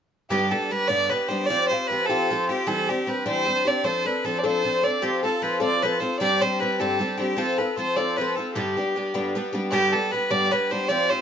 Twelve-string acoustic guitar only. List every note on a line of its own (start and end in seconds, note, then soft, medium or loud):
0.30 0.52 G2 medium
0.30 0.52 D3 medium
0.30 0.52 G3 medium
0.30 0.51 B3 medium
0.30 0.51 D4 medium
0.30 0.50 G4 medium
0.51 0.69 G3 soft
0.51 0.70 B3 soft
0.51 0.70 D4 soft
0.51 0.71 G4 soft
0.70 0.88 G3 soft
0.70 0.88 B3 soft
0.70 0.88 D4 soft
0.70 0.87 G4 soft
0.88 1.11 G2 soft
0.88 1.11 D3 medium
0.88 1.08 G3 soft
0.88 1.09 B3 medium
0.88 1.10 D4 medium
0.88 1.10 G4 soft
1.10 1.29 G3 medium
1.10 1.30 B3 medium
1.10 1.29 D4 medium
1.10 1.27 G4 medium
1.29 1.48 G3 soft
1.29 1.50 B3 soft
1.29 1.49 D4 soft
1.29 1.48 G4 medium
1.49 1.70 F3 medium
1.49 1.71 C4 medium
1.49 1.71 F4 medium
1.49 1.70 G4 medium
1.72 1.90 C4 soft
1.72 1.90 F4 soft
1.72 1.90 G4 soft
1.90 2.09 F3 soft
1.90 2.09 C4 soft
1.90 2.09 F4 soft
1.90 2.08 G4 medium
2.09 2.29 F3 soft
2.09 2.30 C4 medium
2.09 2.30 F4 medium
2.09 2.30 G4 medium
2.30 2.49 F3 medium
2.30 2.49 C4 medium
2.30 2.49 F4 medium
2.30 2.48 G4 medium
2.49 2.66 C4 soft
2.49 2.67 F4 soft
2.49 2.66 G4 medium
2.67 2.88 E3 medium
2.67 2.88 G3 medium
2.67 2.88 C4 medium
2.67 2.87 D4 medium
2.67 2.86 G4 medium
2.87 3.06 C4 soft
2.87 3.07 D4 soft
2.87 3.06 G4 soft
3.06 3.26 G3 soft
3.06 3.24 C4 medium
3.06 3.25 D4 soft
3.06 3.24 G4 medium
3.26 3.47 E3 soft
3.26 3.45 G3 soft
3.26 3.45 C4 medium
3.26 3.46 D4 medium
3.26 3.47 G4 medium
3.46 3.65 G3 medium
3.46 3.65 C4 soft
3.46 3.65 D4 medium
3.46 3.64 G4 medium
3.65 3.83 C4 soft
3.65 3.84 D4 soft
3.65 3.84 G4 soft
3.84 4.05 F3 medium
3.84 4.05 C4 medium
3.84 4.04 D4 medium
3.84 4.03 A4 medium
4.04 4.24 C4 soft
4.04 4.24 D4 soft
4.04 4.24 A4 soft
4.24 4.43 F3 medium
4.24 4.43 C4 medium
4.24 4.43 D4 soft
4.24 4.42 A4 medium
4.44 4.63 F3 soft
4.44 4.64 C4 soft
4.44 4.64 D4 medium
4.44 4.64 A4 medium
4.64 4.83 F3 soft
4.64 4.84 C4 soft
4.64 4.84 D4 medium
4.64 4.82 A4 medium
4.83 5.01 C4 soft
4.83 5.03 D4 soft
4.83 5.02 A4 soft
5.02 5.23 F3 medium
5.02 5.23 C4 medium
5.02 5.23 F4 medium
5.02 5.22 A4 medium
5.23 5.42 C4 soft
5.23 5.43 F4 soft
5.23 5.42 A4 soft
5.42 5.61 F3 medium
5.42 5.60 C4 soft
5.42 5.60 F4 medium
5.42 5.59 A4 medium
5.60 5.81 F3 soft
5.60 5.82 C4 medium
5.60 5.82 F4 medium
5.60 5.81 A4 medium
5.82 6.01 F3 soft
5.82 6.01 C4 medium
5.82 6.00 F4 medium
5.82 5.99 A4 medium
6.00 6.20 C4 soft
6.00 6.20 F4 medium
6.00 6.19 A4 soft
6.20 6.41 G2 medium
6.20 6.41 D3 medium
6.20 6.41 G3 medium
6.20 6.41 C4 medium
6.20 6.40 D4 medium
6.20 6.41 G4 medium
6.42 6.59 G3 soft
6.42 6.60 C4 soft
6.42 6.60 D4 soft
6.42 6.60 G4 soft
6.60 6.79 G3 soft
6.60 6.79 C4 medium
6.60 6.79 D4 soft
6.60 6.79 G4 soft
6.80 7.01 G2 soft
6.80 7.01 D3 soft
6.80 6.98 G3 medium
6.80 6.98 C4 medium
6.80 6.99 D4 soft
6.80 7.00 G4 medium
6.99 7.18 G3 medium
6.99 7.18 C4 medium
6.99 7.17 D4 medium
6.99 7.16 G4 medium
7.17 7.36 G3 soft
7.17 7.36 C4 soft
7.17 7.37 D4 soft
7.17 7.37 G4 medium
7.37 7.58 F3 medium
7.37 7.58 C4 medium
7.37 7.58 F4 medium
7.37 7.57 A4 medium
7.58 7.77 C4 soft
7.58 7.77 F4 soft
7.58 7.77 A4 soft
7.77 7.96 F3 soft
7.77 7.97 C4 soft
7.77 7.96 F4 medium
7.77 7.95 A4 medium
7.97 8.17 F3 soft
7.97 8.18 C4 medium
7.97 8.17 F4 soft
7.97 8.17 A4 medium
8.18 8.36 F3 medium
8.18 8.37 C4 soft
8.18 8.37 F4 soft
8.18 8.35 A4 medium
8.37 8.56 C4 soft
8.37 8.56 F4 soft
8.37 8.55 A4 medium
8.55 8.76 G2 medium
8.55 8.76 D3 medium
8.55 8.76 G3 medium
8.55 8.76 B3 medium
8.55 8.77 D4 medium
8.55 8.76 G4 medium
8.77 8.94 G3 soft
8.77 8.95 B3 soft
8.77 8.96 D4 soft
8.77 8.95 G4 soft
8.95 9.13 G3 soft
8.95 9.14 B3 soft
8.95 9.14 D4 soft
8.95 9.13 G4 soft
9.14 9.35 G2 medium
9.14 9.35 D3 medium
9.14 9.34 G3 medium
9.14 9.35 B3 medium
9.14 9.35 D4 medium
9.14 9.35 G4 medium
9.35 9.53 G3 medium
9.35 9.53 B3 medium
9.35 9.52 D4 medium
9.35 9.51 G4 medium
9.53 9.71 G3 soft
9.53 9.72 B3 soft
9.53 9.72 D4 medium
9.53 9.72 G4 medium
9.72 9.93 G2 medium
9.72 9.93 D3 medium
9.72 9.93 G3 medium
9.72 9.93 B3 medium
9.72 9.92 D4 medium
9.72 9.92 G4 medium
9.93 10.11 G3 soft
9.93 10.12 B3 soft
9.93 10.12 D4 soft
9.93 10.12 G4 soft
10.13 10.30 G3 soft
10.13 10.30 B3 soft
10.13 10.29 D4 soft
10.13 10.29 G4 soft
10.30 10.52 G2 medium
10.30 10.52 D3 medium
10.30 10.50 G3 medium
10.30 10.51 B3 medium
10.30 10.51 D4 medium
10.30 10.51 G4 medium
10.51 10.70 G3 medium
10.51 10.71 B3 medium
10.51 10.70 D4 soft
10.51 10.70 G4 medium
10.71 10.88 G3 soft
10.71 10.89 B3 soft
10.71 10.89 D4 medium
10.71 10.89 G4 medium
10.89 11.10 F3 medium
10.89 11.10 C4 medium
10.89 11.10 F4 medium
10.89 11.09 G4 medium
11.10 11.21 C4 soft
11.10 11.21 F4 soft
11.10 11.21 G4 soft